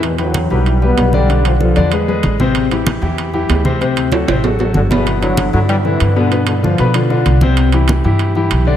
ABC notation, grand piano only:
X:1
M:4/4
L:1/8
Q:1/4=191
K:Em
V:1 name="Grand piano"
z [E,Bg]2 [G,GB]2 [G,GB]2 [D,Dd] | [D,Dd]2 [=F,=FA] [D,Dd] [^G,^GB] [G,GB]2 [C,Cc]- | [C,Cc] [E,EG]2 [E,EG]2 [E,EG]2 [C,Cc] | [C,Cc]2 [F,FA] [C,Cc] [F,FA] [F,FA]2 [B,,B,B]- |
[B,,B,B] [D,DE]2 [D,DE]2 [D,DE]2 [B,,B,B] | [B,,B,B]2 [D,D=F] [B,,B,B] [D,DF] [D,DF]2 [C,Cc]- | [C,Cc] [E,EG]2 [E,EG]2 [E,EG]2 [D,Dd] |]